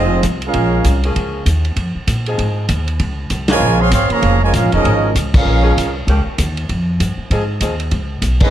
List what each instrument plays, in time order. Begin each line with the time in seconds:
Already playing: upright bass F1, trombone section G#3 C4 D#4, trumpet section C4 F4 G#4 D#5
0.23 upright bass C2, kick, hi-hat pedal, ride
0.42 trumpet section C#4, trombone section C#4, ride
0.46 trombone section G#3 F4, trumpet section G#4 A#4 F5
0.54 upright bass A#1, kick, ride
0.84 upright bass C2, kick, hi-hat pedal, ride
1.04 saxophone section F3 A#3 C#4 G#4, ride
1.16 upright bass C#2, kick, ride
1.46 upright bass D#2, kick, hi-hat pedal, ride
1.65 ride
1.76 upright bass F2, kick, ride
1.95 muted upright bass stroke
2.07 upright bass A#2, kick, hi-hat pedal, ride
2.26 saxophone section F3 C4 D#4 G#4, ride
2.38 upright bass G#2, kick, ride
2.69 upright bass D#2, kick, hi-hat pedal, ride
2.88 ride
3.00 upright bass C#2, kick, ride
3.30 upright bass C2, kick, hi-hat pedal, ride
3.48 trombone section C#3 F3 G#3, saxophone section F3 A#3 C#4 G#4, trumpet section F4 A#4 C#5 G#5, snare, ride
3.60 upright bass A#1
3.80 trombone section C4, trumpet section G#4 C#5 F5 C6
3.91 upright bass G#1, trombone section C4, trumpet section G#4 C#5 F5 C6, kick, hi-hat pedal, ride
4.10 trombone section C#3 F3 A#3, trumpet section G#4 C#5 F5 A#5, muted upright bass stroke, ride
4.22 upright bass F1, saxophone section F3 A#3 C#4 G#4, kick, ride
4.42 trombone section C#3 F3 G#3, trumpet section F4 A#4 C#5 G#5
4.53 upright bass A#1, trombone section G#3 C#4 F4, trumpet section C#4 G#4 A#4 F5, kick, hi-hat pedal, ride
4.64 upright bass G#1
4.72 upright bass F1, saxophone section F3 A#3 C#4 A#4, trombone section F3 G#3 D#4, trumpet section C#4 G#4 A#4 D#5, ride
4.84 upright bass G#1, kick, ride
5.15 upright bass C#2, kick, hi-hat pedal, ride
5.34 trombone section G#3 C#4 F4, trumpet section C#4 G#4 A#4 F5, kick, crash
5.45 upright bass A#1
5.63 saxophone section F3 A#3 C#4 G#4
5.77 upright bass C2, kick, hi-hat pedal, ride
6.07 upright bass C#2, saxophone section F3 A#3 C#4 G4, kick, ride
6.26 muted upright bass stroke
6.38 upright bass D#2, kick, hi-hat pedal, ride
6.57 ride
6.69 upright bass F2, kick, ride
7.00 upright bass G2, kick, hi-hat pedal, ride
7.18 muted upright bass stroke
7.30 upright bass G#2, saxophone section F3 C4 D#4 G#4, kick, ride
7.60 upright bass D#2, saxophone section F3 C4 D#4 G#4, kick, hi-hat pedal, ride
7.80 ride
7.91 upright bass C#2, kick, ride
8.22 upright bass B1, kick, hi-hat pedal, ride
8.40 trumpet section C#4 G#4 B4 D#5, kick, crash
8.44 trombone section G#3 B3 D#4